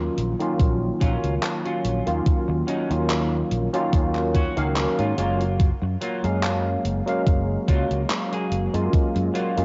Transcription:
0.00 0.35 D#3 medium
0.00 0.35 F#3 medium
0.00 0.35 A#3 medium
0.00 0.35 C#4 medium
0.00 0.36 F4 medium
0.18 0.33 A#1 medium
0.18 closed hi-hat medium
0.39 2.01 D#3 medium
0.39 2.01 F#3 medium
0.39 2.02 A#3 medium
0.39 2.02 C#4 medium
0.39 2.03 F4 medium
0.39 closed hi-hat medium
0.60 0.89 A#1 loud
0.60 kick loud
0.60 closed hi-hat medium
1.00 1.17 A#1 medium
1.00 1.33 F#3 loud
1.00 1.33 C#4 loud
1.00 1.34 F4 loud
1.00 kick medium
1.00 closed hi-hat medium
1.24 1.37 C#2 medium
1.24 closed hi-hat medium
1.43 clap loud
1.43 closed hi-hat medium
1.65 2.07 F#3 medium
1.65 2.07 C#4 medium
1.65 2.08 F4 loud
1.65 closed hi-hat soft
1.85 2.00 A#1 medium
1.85 closed hi-hat medium
2.06 2.20 D#2 medium
2.06 2.85 D#3 medium
2.06 2.85 F#3 medium
2.06 2.85 A#3 medium
2.06 2.85 C#4 medium
2.06 2.85 F4 medium
2.06 closed hi-hat medium
2.26 muted fretless electric bass stroke soft
2.26 kick loud
2.26 closed hi-hat medium
2.48 2.62 D#2 loud
2.48 muted clean electric guitar stroke medium
2.67 2.90 F#3 loud
2.67 2.90 C#4 loud
2.67 2.91 D#4 loud
2.67 closed hi-hat medium
2.90 3.42 D#2 medium
2.90 3.68 D#3 medium
2.90 3.68 F#3 medium
2.90 3.69 A#3 medium
2.90 3.69 C#4 medium
2.90 3.69 F4 medium
2.90 closed hi-hat medium
3.09 muted clean electric guitar stroke soft
3.09 clap loud
3.09 closed hi-hat medium
3.51 3.67 A#1 loud
3.51 closed hi-hat medium
3.73 4.51 D#3 medium
3.73 4.52 F#3 medium
3.73 4.52 A#3 medium
3.73 4.52 C#4 medium
3.73 4.52 F4 loud
3.73 closed hi-hat medium
3.93 4.46 D#2 medium
3.93 kick loud
3.93 closed hi-hat medium
4.15 clap soft
4.34 4.67 F#3 loud
4.34 4.67 C#4 loud
4.34 4.67 F#4 loud
4.34 kick medium
4.34 closed hi-hat medium
4.56 4.85 C#2 loud
4.56 5.13 D#3 medium
4.56 5.13 F#3 medium
4.56 5.14 A#3 medium
4.56 5.14 C#4 medium
4.56 5.14 F5 loud
4.56 closed hi-hat medium
4.76 clap loud
4.76 closed hi-hat medium
4.98 5.12 G#2 medium
4.98 5.16 F#3 medium
4.98 5.18 C#4 medium
4.98 5.18 F4 medium
4.98 closed hi-hat soft
5.18 5.71 F#1 medium
5.18 5.40 F#3 medium
5.18 5.69 F#3 medium
5.18 5.41 G#3 medium
5.18 5.41 A#3 medium
5.18 5.69 A#3 medium
5.18 5.41 C#4 medium
5.18 5.41 F4 medium
5.18 5.69 F4 loud
5.18 closed hi-hat medium
5.41 closed hi-hat medium
5.60 kick loud
5.60 closed hi-hat medium
5.82 5.95 F#2 medium
5.82 muted clean electric guitar stroke medium
6.01 6.24 F#3 loud
6.01 6.24 A#3 loud
6.01 6.25 F4 loud
6.01 closed hi-hat medium
6.23 6.75 F#2 medium
6.23 7.02 F#3 medium
6.23 7.02 G#3 medium
6.23 7.02 A#3 medium
6.23 7.02 C#4 medium
6.23 7.02 F5 medium
6.23 closed hi-hat medium
6.43 muted clean electric guitar stroke soft
6.43 clap loud
6.43 closed hi-hat medium
6.85 7.00 F#1 medium
6.85 closed hi-hat medium
7.06 8.68 F#3 medium
7.06 8.68 G#3 medium
7.06 8.69 A#3 medium
7.06 8.69 C#4 medium
7.06 8.69 F5 medium
7.06 closed hi-hat medium
7.27 7.56 F#1 loud
7.27 kick loud
7.27 closed hi-hat medium
7.68 7.84 C#2 medium
7.68 8.00 F#3 loud
7.68 8.00 A#3 loud
7.68 8.01 F4 loud
7.68 kick medium
7.68 closed hi-hat medium
7.91 8.04 C#2 medium
7.91 closed hi-hat medium
8.10 clap loud
8.10 closed hi-hat medium
8.32 8.74 F#3 medium
8.32 8.74 A#3 medium
8.32 8.75 G#4 medium
8.32 closed hi-hat soft
8.51 8.67 F#1 medium
8.51 closed hi-hat medium
8.73 8.87 F#2 medium
8.73 9.52 F#3 medium
8.73 9.52 G#3 medium
8.73 9.52 A#3 medium
8.73 9.52 C#4 medium
8.73 9.52 F4 medium
8.73 closed hi-hat medium
8.93 kick loud
8.93 closed hi-hat medium
9.15 9.29 F#2 medium
9.15 muted clean electric guitar stroke medium
9.15 closed hi-hat soft
9.34 9.57 F#3 loud
9.34 9.57 A#3 loud
9.34 9.58 F4 loud
9.34 closed hi-hat medium
9.56 9.65 F#2 medium
9.56 9.65 F#3 medium
9.56 9.65 G#3 medium
9.56 9.65 A#3 medium
9.56 9.65 C#4 medium
9.56 9.65 F4 medium
9.56 closed hi-hat medium

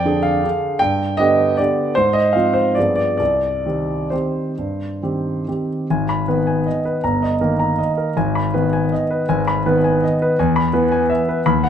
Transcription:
0.00 0.46 F2 medium
0.00 0.46 D5 medium
0.00 0.24 G5 medium
0.05 0.40 D3 soft
0.05 0.40 D4 soft
0.05 0.41 G#4 soft
0.23 0.81 F5 medium
0.44 0.78 D3 soft
0.44 0.78 D4 soft
0.44 0.79 G#4 soft
0.79 1.19 G2 medium
0.79 1.19 G5 medium
1.17 1.55 D3 soft
1.17 1.55 B3 soft
1.17 1.55 G4 medium
1.17 1.58 D#5 medium
1.57 1.93 D3 soft
1.57 1.93 B3 soft
1.57 1.93 G4 soft
1.57 1.95 D5 medium
1.95 2.34 G#2 medium
1.95 2.14 C5 medium
2.13 2.34 D#5 medium
2.33 2.73 F3 soft
2.33 2.73 C4 soft
2.33 2.73 F4 soft
2.33 2.54 F5 medium
2.54 2.76 C5 medium
2.75 3.19 G2 soft
2.75 3.16 F3 soft
2.75 3.17 B3 soft
2.75 3.17 G#4 soft
2.75 2.94 D5 medium
2.96 3.16 D5 medium
3.17 3.64 C2 soft
3.17 4.11 D5 medium
3.66 4.09 D#3 soft
3.66 4.09 C4 soft
3.66 4.09 G4 soft
4.10 4.54 D#3 soft
4.10 4.54 C4 soft
4.10 4.55 G4 soft
4.10 5.69 C5 soft
4.58 5.01 G2 soft
5.03 5.44 D#3 soft
5.03 5.44 C4 soft
5.03 5.44 G4 soft
5.48 5.86 D#3 soft
5.48 5.86 C4 soft
5.48 5.86 G4 soft
5.90 6.27 G#1 medium
5.90 6.20 G#5 medium
6.09 6.39 B5 medium
6.28 6.99 D#3 soft
6.28 7.00 B3 soft
6.28 6.58 B4 medium
6.47 6.78 G#5 medium
6.66 6.96 D#5 soft
6.85 7.03 B4 medium
7.04 7.39 G1 medium
7.04 7.33 A#5 medium
7.22 7.52 D#5 medium
7.41 8.13 D#3 soft
7.41 8.13 A#3 soft
7.41 7.71 A#4 medium
7.60 7.90 A#5 medium
7.78 8.09 D#5 medium
7.97 8.16 A#4 medium
8.17 8.53 G#1 medium
8.17 8.46 G#5 medium
8.35 8.65 B5 medium
8.54 9.25 D#3 medium
8.54 9.25 B3 soft
8.54 8.84 B4 medium
8.73 9.03 G#5 medium
8.92 9.21 D#5 medium
9.11 9.39 B4 medium
9.29 9.64 G#1 medium
9.29 9.58 G#5 medium
9.47 9.77 B5 medium
9.66 10.35 D#3 medium
9.66 10.35 B3 medium
9.66 9.96 B4 medium
9.84 10.14 G#5 medium
10.03 10.32 D#5 medium
10.22 10.39 B4 medium
10.39 10.73 E2 medium
10.39 10.67 G#5 medium
10.56 10.84 B5 medium
10.73 11.42 E3 medium
10.73 11.42 B3 medium
10.73 11.03 B4 medium
10.92 11.21 G#5 medium
11.10 11.39 E5 medium
11.29 11.46 B4 medium
11.46 11.69 D#2 medium
11.46 11.69 B5 medium
11.64 11.69 F#5 medium

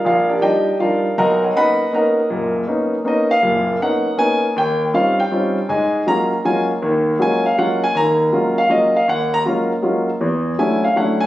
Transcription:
0.05 0.37 A#1 medium
0.05 0.29 F4 medium
0.05 0.29 A#4 medium
0.05 0.28 D5 medium
0.05 0.29 F5 medium
0.29 0.40 D4 soft
0.29 0.41 G4 medium
0.29 0.42 A#4 medium
0.29 0.41 D5 medium
0.41 0.67 F3 medium
0.41 0.68 G3 soft
0.41 0.68 D4 medium
0.41 0.68 D#4 medium
0.41 0.77 G4 medium
0.41 0.77 D5 medium
0.41 0.77 D#5 medium
0.41 0.77 G5 medium
0.79 1.05 F3 medium
0.79 1.05 G3 soft
0.79 1.06 D4 soft
0.79 1.06 D#4 medium
0.79 1.38 F4 medium
0.79 1.17 A#4 medium
0.79 1.15 D5 medium
0.79 1.38 F5 medium
1.18 1.50 B1 medium
1.18 1.42 A#4 medium
1.18 1.42 D#5 medium
1.18 1.42 F#5 medium
1.18 1.42 A#5 medium
1.44 1.55 F#4 medium
1.44 1.55 C#5 medium
1.44 1.55 D#5 medium
1.44 1.55 F#5 medium
1.55 1.81 A#3 medium
1.55 1.81 B3 medium
1.55 1.81 C#4 medium
1.55 1.81 D#4 medium
1.55 1.91 B4 medium
1.55 1.91 D#5 medium
1.55 1.91 F#5 medium
1.55 1.90 B5 loud
1.92 2.18 A#3 medium
1.92 2.18 B3 medium
1.92 2.18 C#4 medium
1.92 2.19 D#4 medium
1.92 2.52 A#4 medium
1.92 2.52 D#5 medium
1.92 2.52 F#5 medium
1.92 2.52 A#5 medium
2.30 2.62 F#1 medium
2.30 2.62 A#2 medium
2.67 2.93 A#3 medium
2.67 2.93 B3 medium
2.67 2.94 C#4 soft
2.67 2.94 D#4 medium
3.04 3.31 A#3 medium
3.04 3.31 B3 medium
3.04 3.31 C#4 medium
3.04 3.31 D#4 medium
3.04 3.30 D#5 medium
3.31 3.77 F5 loud
3.43 3.75 F#1 medium
3.43 3.75 A#2 medium
3.80 4.06 A#3 medium
3.80 4.07 B3 medium
3.80 4.07 C#4 soft
3.80 4.07 D#4 medium
3.80 4.16 F#5 medium
4.17 4.44 A#3 medium
4.17 4.44 B3 medium
4.17 4.44 C#4 medium
4.17 4.44 D#4 medium
4.17 4.53 G#5 loud
4.56 4.88 D#2 medium
4.56 4.81 G5 medium
4.93 5.19 G3 medium
4.93 5.19 C4 medium
4.93 5.19 C#4 medium
4.93 5.20 D#4 medium
4.93 5.20 F4 medium
4.93 5.18 F5 medium
5.20 5.65 G5 medium
5.31 5.57 G3 medium
5.31 5.57 C4 medium
5.31 5.57 C#4 medium
5.31 5.57 D#4 medium
5.31 5.58 F4 medium
5.69 6.01 G#2 medium
5.69 6.01 G#3 medium
5.69 6.04 G#5 medium
6.07 6.32 F#3 medium
6.07 6.32 G#3 medium
6.07 6.33 A#3 medium
6.07 6.33 C#4 soft
6.07 6.33 F4 medium
6.07 6.42 A#5 loud
6.45 6.70 F#3 medium
6.45 6.70 G#3 soft
6.45 6.70 A#3 medium
6.45 6.70 C#4 soft
6.45 6.71 F4 medium
6.45 6.60 G#5 medium
6.82 7.14 D#2 medium
6.82 7.14 D#3 medium
7.19 7.45 F#3 medium
7.19 7.45 G#3 medium
7.19 7.46 A#3 soft
7.19 7.46 C#4 soft
7.19 7.46 F4 medium
7.19 7.45 G#5 medium
7.46 7.57 F5 medium
7.58 7.83 F#3 medium
7.58 7.83 G#3 medium
7.58 7.83 A#3 soft
7.58 7.83 C#4 medium
7.58 7.84 F4 medium
7.58 7.82 F#5 medium
7.84 7.95 G#5 medium
7.95 8.27 D#2 medium
7.95 8.27 D#3 medium
7.95 8.54 A#5 loud
8.32 8.58 F#3 medium
8.32 8.58 G#3 soft
8.32 8.58 A#3 medium
8.32 8.59 C#4 medium
8.32 8.59 F4 medium
8.58 8.70 F5 medium
8.69 8.95 F#3 medium
8.69 8.96 G#3 medium
8.69 8.96 A#3 medium
8.69 8.96 C#4 medium
8.69 8.96 F4 medium
8.69 8.94 D#5 medium
8.96 9.08 F5 medium
9.08 9.40 D#2 medium
9.08 9.32 F#5 medium
9.34 9.41 A#5 loud
9.45 9.71 F#3 medium
9.45 9.71 G#3 soft
9.45 9.71 A#3 medium
9.45 9.72 C#4 medium
9.45 9.72 F4 medium
9.82 10.09 F#3 medium
9.82 10.09 G#3 medium
9.82 10.09 A#3 medium
9.82 10.09 C#4 soft
9.82 10.09 F4 medium
10.21 10.53 E2 medium
10.21 10.53 E3 medium
10.58 10.84 F#3 medium
10.58 10.84 A3 medium
10.58 10.84 C#4 medium
10.58 10.84 D4 soft
10.58 10.85 E4 medium
10.58 10.83 G#5 medium
10.84 10.96 F5 medium
10.96 11.22 F#3 medium
10.96 11.22 A3 medium
10.96 11.22 C#4 medium
10.96 11.22 D4 medium
10.96 11.22 E4 medium
10.96 11.20 F#5 medium
11.20 11.27 G#5 medium

